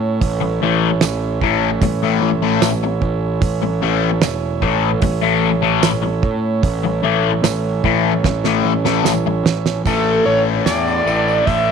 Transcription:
0.00 0.19 A2 medium
0.00 9.83 A3 medium
0.00 9.83 C#4 medium
0.00 9.83 E4 medium
0.00 9.82 C#5 medium
0.00 9.83 E5 medium
0.21 0.59 A1 medium
0.21 kick loud
0.21 open hi-hat soft
0.40 muted distorted electric guitar stroke medium
0.62 0.99 A1 medium
0.62 0.88 A2 medium
0.62 0.88 E3 medium
0.62 0.89 A3 medium
1.01 1.39 A1 medium
1.01 muted distorted electric guitar stroke soft
1.01 snare medium
1.01 open hi-hat soft
1.01 tambourine loud
1.41 1.79 A1 medium
1.41 1.68 A2 medium
1.41 1.69 E3 medium
1.41 1.69 A3 medium
1.41 kick medium
1.81 2.19 A1 medium
1.81 muted distorted electric guitar stroke soft
1.81 kick loud
1.81 open hi-hat medium
2.03 2.29 A2 medium
2.03 2.29 E3 medium
2.03 2.29 A3 medium
2.22 2.59 A1 medium
2.42 2.69 A2 medium
2.42 2.69 E3 medium
2.42 2.68 A3 medium
2.62 2.99 A1 medium
2.62 snare medium
2.62 open hi-hat medium
2.62 tambourine medium
2.83 muted distorted electric guitar stroke soft
3.02 3.39 A1 medium
3.02 kick medium
3.42 3.79 A1 medium
3.42 kick loud
3.42 open hi-hat medium
3.62 muted distorted electric guitar stroke medium
3.82 4.20 A1 medium
3.82 4.08 A2 medium
3.82 4.09 E3 medium
3.82 4.09 A3 medium
4.22 4.60 E1 medium
4.22 muted distorted electric guitar stroke soft
4.22 snare medium
4.22 open hi-hat soft
4.22 tambourine medium
4.62 5.00 A1 medium
4.62 4.89 A2 medium
4.62 4.89 E3 medium
4.62 4.89 A3 medium
4.62 kick medium
5.02 5.79 A1 medium
5.02 muted distorted electric guitar stroke soft
5.02 kick loud
5.02 open hi-hat medium
5.21 5.49 A2 medium
5.21 5.49 E3 medium
5.21 5.48 A3 medium
5.62 5.89 A2 medium
5.62 5.89 E3 medium
5.62 5.89 A3 medium
5.83 6.21 A1 medium
5.83 snare medium
5.83 open hi-hat soft
5.83 tambourine medium
6.02 muted distorted electric guitar stroke soft
6.23 6.61 A2 medium
6.23 kick medium
6.63 7.01 A1 medium
6.63 kick loud
6.63 open hi-hat soft
6.83 muted distorted electric guitar stroke medium
7.03 7.41 A1 medium
7.03 7.30 A2 medium
7.03 7.30 E3 medium
7.03 7.30 A3 loud
7.43 7.81 A1 medium
7.43 muted distorted electric guitar stroke soft
7.43 snare medium
7.43 open hi-hat soft
7.43 tambourine medium
7.84 8.22 A1 medium
7.84 8.11 A2 medium
7.84 8.11 E3 medium
7.84 8.11 A3 medium
7.84 kick medium
8.24 8.62 A1 medium
8.24 muted distorted electric guitar stroke soft
8.24 kick loud
8.24 snare medium
8.44 8.72 A2 medium
8.44 8.71 E3 medium
8.44 8.71 A3 medium
8.44 snare soft
8.65 9.02 A1 medium
8.85 9.12 A2 medium
8.85 9.12 E3 medium
8.85 9.11 A3 medium
8.85 snare medium
9.05 9.43 A1 medium
9.05 snare medium
9.05 tambourine medium
9.26 muted distorted electric guitar stroke soft
9.45 9.83 A1 medium
9.45 snare medium
9.66 snare medium
9.85 10.19 A1 medium
9.85 11.05 A2 medium
9.85 11.06 E3 medium
9.85 11.72 A3 medium
9.85 11.05 A3 medium
9.85 11.72 D4 soft
9.85 11.72 E4 medium
9.85 10.24 A4 medium
9.85 11.72 E5 medium
9.85 kick loud
9.85 open hi-hat soft
9.85 tambourine medium
10.26 10.59 A1 medium
10.26 10.40 C#5 medium
10.66 10.99 E2 medium
10.66 11.48 D5 medium
10.66 snare medium
10.66 open hi-hat soft
10.66 tambourine medium
10.87 tambourine soft
11.06 11.40 A1 medium
11.06 11.72 A2 medium
11.06 11.72 E3 medium
11.06 11.72 A3 medium
11.06 tambourine soft
11.28 tambourine soft
11.46 11.72 A1 medium
11.46 11.72 E5 loud
11.46 kick loud
11.46 open hi-hat soft
11.46 tambourine soft

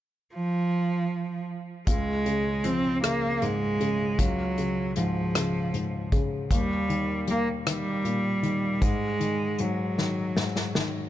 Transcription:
0.34 1.45 F3 medium
1.87 4.15 C#2 soft
1.87 2.66 G#3 medium
1.87 kick medium
1.87 closed hi-hat medium
2.26 3.01 C#3 soft
2.26 closed hi-hat soft
2.64 4.15 F3 soft
2.64 3.02 C4 medium
2.64 closed hi-hat soft
3.03 3.79 C#3 soft
3.03 3.43 A#3 medium
3.03 cross-stick medium
3.03 closed hi-hat medium
3.42 4.17 G#2 soft
3.42 4.20 G#3 medium
3.42 closed hi-hat soft
3.80 4.18 C#3 soft
3.80 closed hi-hat soft
4.19 6.47 C#2 soft
4.19 4.95 F#3 medium
4.19 kick medium
4.19 closed hi-hat medium
4.58 5.34 C#3 soft
4.58 closed hi-hat soft
4.96 5.72 G#2 soft
4.96 6.08 F3 medium
4.96 closed hi-hat soft
5.35 6.11 C#3 soft
5.35 cross-stick medium
5.35 closed hi-hat medium
5.74 6.48 G#2 soft
5.74 closed hi-hat soft
6.12 6.49 C#3 soft
6.12 kick medium
6.12 closed hi-hat soft
6.51 8.78 D#2 soft
6.51 7.25 G3 medium
6.51 kick medium
6.51 closed hi-hat medium
6.89 7.65 D#3 soft
6.89 closed hi-hat soft
7.28 8.78 G3 soft
7.28 7.47 A#3 medium
7.28 closed hi-hat soft
7.66 8.41 D#3 soft
7.66 8.85 G3 medium
7.66 cross-stick medium
7.66 closed hi-hat medium
8.05 8.79 A#2 soft
8.05 closed hi-hat soft
8.43 8.80 D#3 soft
8.43 closed hi-hat soft
8.82 9.58 G#2 soft
8.82 9.62 G#3 medium
8.82 kick medium
8.82 closed hi-hat medium
9.20 9.96 D#3 soft
9.20 closed hi-hat soft
9.59 10.35 G#2 soft
9.59 10.75 F#3 medium
9.59 closed hi-hat soft
9.98 10.74 D#3 soft
9.98 snare soft
10.37 11.09 G#2 soft
10.37 snare medium
10.56 snare soft
10.75 11.09 D#3 soft
10.75 snare medium

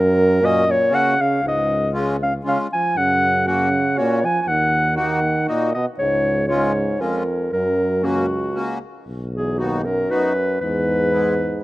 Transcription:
0.00 0.43 F#2 medium
0.00 0.89 F#2 loud
0.00 0.47 A#4 loud
0.41 0.66 A#2 medium
0.41 0.65 A#3 medium
0.41 0.65 C#4 medium
0.41 0.65 F#4 medium
0.45 0.72 D#5 loud
0.66 0.93 A#2 medium
0.71 0.96 C#5 loud
0.90 1.19 C#3 medium
0.90 1.14 A#3 medium
0.90 1.14 C#4 medium
0.90 1.14 F#4 medium
0.95 1.23 F#5 medium
1.19 1.43 C#3 medium
1.19 1.45 F5 medium
1.42 2.42 C#2 medium
1.42 1.89 G#2 medium
1.48 1.91 D#5 loud
1.93 2.16 G#3 medium
1.93 2.17 C#4 medium
1.93 2.17 F4 medium
2.21 2.32 C#3 medium
2.21 2.34 F5 medium
2.44 2.58 C#3 medium
2.44 2.67 G#3 medium
2.44 2.68 C#4 soft
2.44 2.67 F4 medium
2.48 2.59 F5 medium
2.73 2.99 F3 medium
2.73 2.99 G#5 loud
2.96 3.94 F#2 medium
2.96 3.47 C#3 medium
2.96 3.47 F#5 loud
3.46 4.02 C#3 medium
3.46 3.69 A#3 medium
3.46 3.69 C#4 medium
3.46 3.69 F#4 medium
3.46 4.00 F#5 medium
3.96 4.20 A#3 medium
3.96 4.19 C#4 soft
3.96 4.20 F#4 soft
3.96 4.27 C#5 medium
4.00 4.26 A#2 medium
4.24 4.43 F3 medium
4.24 4.41 G#5 medium
4.41 4.52 F3 medium
4.41 4.49 G#5 medium
4.47 5.45 D#2 medium
4.47 4.99 D#3 medium
4.47 4.96 F#5 loud
4.96 5.20 A#3 medium
4.96 5.20 D#4 soft
4.96 5.20 F#4 medium
4.96 5.44 F#5 medium
5.00 5.46 D#3 medium
5.46 5.73 A#2 medium
5.46 5.70 A#3 medium
5.46 5.71 D#4 medium
5.46 5.70 F#4 medium
5.46 5.72 D#5 medium
5.75 5.86 B2 medium
5.75 5.86 D#5 medium
5.99 6.99 C#2 medium
5.99 6.47 G#2 medium
5.99 6.46 C#5 medium
6.48 7.02 G#2 medium
6.48 6.73 G#3 medium
6.48 6.72 C#4 medium
6.48 6.73 F4 medium
6.48 7.02 C#5 medium
7.00 7.52 F2 medium
7.00 7.23 G#3 medium
7.00 7.23 C#4 soft
7.00 7.23 F4 medium
7.00 7.52 A#4 medium
7.52 8.53 F#2 medium
7.52 8.05 F#2 medium
7.52 8.06 A#4 medium
8.02 8.82 C#2 medium
8.02 8.26 A#3 medium
8.02 8.26 C#4 soft
8.02 8.26 F#4 medium
8.02 8.82 F#4 medium
8.55 8.79 A#3 medium
8.55 8.79 C#4 soft
8.55 8.79 F#4 medium
9.07 10.07 B1 medium
9.35 9.62 E2 medium
9.35 9.60 G#4 medium
9.58 9.87 D#2 medium
9.58 9.81 B3 medium
9.58 9.82 D#4 soft
9.58 9.82 F#4 medium
9.58 9.87 F#4 medium
9.85 10.12 F#2 medium
9.85 10.12 A#4 medium
10.09 10.61 F#2 medium
10.09 10.33 B3 soft
10.09 10.33 D#4 soft
10.09 10.33 F#4 medium
10.09 10.60 B4 medium
10.61 11.59 E2 medium
10.61 11.64 G#2 medium
10.61 11.64 B4 medium
11.12 11.34 G#3 medium
11.12 11.35 B3 medium
11.12 11.34 E4 medium

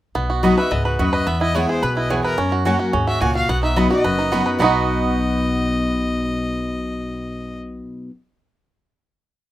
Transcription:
0.15 0.52 B1 medium
0.15 0.68 B2 medium
0.15 0.42 B3 medium
0.30 0.69 F#4 medium
0.43 0.57 F#3 medium
0.43 0.52 B3 medium
0.43 0.70 B3 medium
0.43 0.57 B3 medium
0.43 0.58 D#4 medium
0.43 0.53 F#4 loud
0.43 0.56 F#4 medium
0.43 0.53 D#5 medium
0.43 0.53 B5 loud
0.57 0.72 D#4 soft
0.57 0.71 F#4 medium
0.57 0.84 B4 medium
0.57 0.73 E5 medium
0.71 0.95 C#2 medium
0.71 0.98 G#2 medium
0.71 1.11 B3 medium
0.71 0.86 D#5 medium
0.85 1.01 F#4 soft
0.85 1.12 B4 medium
0.99 1.23 D#2 medium
0.99 1.26 F#2 medium
0.99 1.08 B3 medium
0.99 1.27 F#4 medium
0.99 1.08 F#4 medium
0.99 1.15 B4 medium
0.99 1.09 D#5 medium
0.99 1.09 B5 medium
1.13 1.27 B4 medium
1.13 1.29 D#5 loud
1.27 1.64 E2 loud
1.27 1.80 E2 medium
1.27 1.54 B3 medium
1.27 1.41 E5 medium
1.41 1.80 E4 medium
1.41 1.56 D#5 medium
1.54 1.81 E3 loud
1.54 1.82 G#3 medium
1.54 1.64 B3 medium
1.54 1.94 B3 medium
1.54 1.82 B3 medium
1.54 1.64 E4 loud
1.54 1.82 E4 loud
1.54 1.64 B4 medium
1.54 1.68 C#5 medium
1.54 1.64 G#5 medium
1.69 2.08 G#4 medium
1.69 1.84 C5 medium
1.82 2.19 B1 medium
1.82 2.36 B2 medium
1.82 2.22 B4 medium
1.82 1.96 B4 medium
1.97 2.36 E4 medium
1.97 2.12 D#5 medium
2.10 2.37 E2 medium
2.10 2.20 B3 medium
2.10 2.20 E4 medium
2.10 2.38 G#4 medium
2.10 2.20 B4 medium
2.10 2.24 C#5 medium
2.10 2.20 G#5 medium
2.24 2.50 A#4 medium
2.24 2.38 B4 medium
2.38 2.91 F#2 medium
2.38 2.75 F#2 medium
2.38 2.64 C#4 medium
2.52 2.79 F#4 medium
2.65 2.92 F#3 medium
2.65 2.75 A#3 medium
2.65 2.92 A#3 medium
2.65 2.92 C#4 medium
2.65 2.93 C#4 medium
2.65 2.75 F#4 loud
2.65 2.93 F#4 loud
2.65 2.75 C#5 medium
2.65 2.75 F#5 loud
2.79 3.07 F#4 medium
2.93 3.17 D#2 medium
2.93 3.20 G#2 medium
2.93 3.33 C#4 medium
3.07 3.21 F#4 medium
3.07 3.22 E5 medium
3.21 3.45 C#2 medium
3.21 3.48 A#2 medium
3.21 3.30 A#3 medium
3.21 3.30 F#4 medium
3.21 3.35 F#4 medium
3.21 3.31 C#5 medium
3.21 3.31 F#5 medium
3.21 3.35 G#5 loud
3.35 3.90 F#4 medium
3.35 3.51 F5 loud
3.49 3.85 B1 medium
3.49 4.02 B2 medium
3.49 3.75 B3 medium
3.49 3.63 F#5 medium
3.63 4.02 D#4 medium
3.63 3.78 E5 medium
3.76 3.90 F#3 medium
3.76 4.16 B3 medium
3.76 3.86 B3 medium
3.76 3.90 B3 medium
3.76 3.91 D#4 medium
3.76 3.86 F#4 medium
3.76 3.89 F#4 medium
3.76 3.91 D#5 medium
3.76 3.86 D#5 loud
3.76 3.86 B5 medium
3.90 4.05 D#4 medium
3.90 4.29 F#4 medium
3.90 4.04 F#4 medium
3.90 4.49 D#5 medium
4.04 4.41 F#1 medium
4.04 4.57 F#2 medium
4.04 4.43 B4 medium
4.18 4.57 D#4 medium
4.32 4.58 F#3 medium
4.32 4.41 B3 medium
4.32 4.59 B3 medium
4.32 4.59 D#4 medium
4.32 4.60 F#4 medium
4.32 4.41 F#4 medium
4.32 4.59 F#4 loud
4.32 4.41 D#5 medium
4.32 4.42 B5 medium
4.46 4.60 B4 medium
4.59 7.79 B1 loud
4.59 8.09 B2 medium
4.59 8.09 F#3 medium
4.59 8.09 B3 medium
4.59 7.80 B3 medium
4.59 8.10 B3 medium
4.59 8.11 D#4 medium
4.59 7.82 D#4 medium
4.59 8.09 F#4 medium
4.59 8.12 F#4 loud
4.59 8.10 D#5 medium
4.59 7.57 D#5 medium
4.59 8.11 B5 medium
4.64 7.84 F#4 medium

